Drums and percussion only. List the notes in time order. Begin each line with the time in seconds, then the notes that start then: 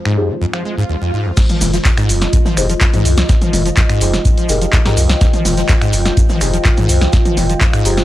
0.05 finger snap
0.53 finger snap
1.37 kick, snare, closed hi-hat, crash, cabasa
1.49 closed hi-hat, mid tom, cabasa
1.61 snare, closed hi-hat, open hi-hat, mid tom, cabasa
1.73 snare, closed hi-hat, cabasa
1.85 kick, snare, clap, closed hi-hat, cabasa
1.97 finger snap, closed hi-hat, cabasa
2.09 closed hi-hat, open hi-hat, cabasa
2.22 snare, closed hi-hat, cabasa
2.33 kick, closed hi-hat, cabasa
2.45 snare, mid tom, cabasa
2.57 finger snap, closed hi-hat, open hi-hat, cabasa
2.70 closed hi-hat, cabasa
2.81 kick, snare, clap, closed hi-hat, cabasa
2.94 closed hi-hat, mid tom, cabasa
3.05 closed hi-hat, open hi-hat, cabasa
3.17 snare, closed hi-hat, cabasa
3.29 kick, snare, closed hi-hat, cabasa
3.42 closed hi-hat, mid tom, cabasa
3.53 closed hi-hat, open hi-hat, mid tom, cabasa
3.66 closed hi-hat, cabasa
3.77 kick, snare, clap, closed hi-hat, cabasa
3.90 finger snap, closed hi-hat, cabasa
4.01 closed hi-hat, open hi-hat, cabasa
4.14 snare, closed hi-hat, cabasa
4.25 kick, closed hi-hat, cabasa
4.38 closed hi-hat, cabasa
4.49 closed hi-hat, open hi-hat, cabasa
4.61 closed hi-hat, cabasa
4.73 kick, snare, clap, closed hi-hat, cabasa
4.85 snare, closed hi-hat, cabasa
4.97 closed hi-hat, open hi-hat, cabasa
5.09 snare, closed hi-hat, cabasa
5.21 kick, snare, closed hi-hat, cabasa
5.33 closed hi-hat, mid tom, cabasa
5.45 snare, closed hi-hat, open hi-hat, mid tom, cabasa
5.57 snare, closed hi-hat, cabasa
5.69 kick, snare, clap, closed hi-hat, cabasa
5.81 finger snap, closed hi-hat, cabasa
5.93 closed hi-hat, open hi-hat, cabasa
6.05 snare, closed hi-hat, cabasa
6.17 kick, closed hi-hat, cabasa
6.29 snare, mid tom, cabasa
6.41 finger snap, closed hi-hat, open hi-hat, cabasa
6.53 closed hi-hat, cabasa
6.65 kick, snare, clap, closed hi-hat, cabasa
6.77 closed hi-hat, mid tom, cabasa
6.89 closed hi-hat, open hi-hat, cabasa
7.01 snare, closed hi-hat, cabasa
7.13 kick, snare, closed hi-hat, cabasa
7.25 closed hi-hat, mid tom, cabasa
7.37 closed hi-hat, open hi-hat, mid tom, cabasa
7.49 closed hi-hat, cabasa
7.61 kick, snare, clap, closed hi-hat, cabasa
7.73 finger snap, closed hi-hat, cabasa
7.85 closed hi-hat, open hi-hat, cabasa
7.97 snare, closed hi-hat, cabasa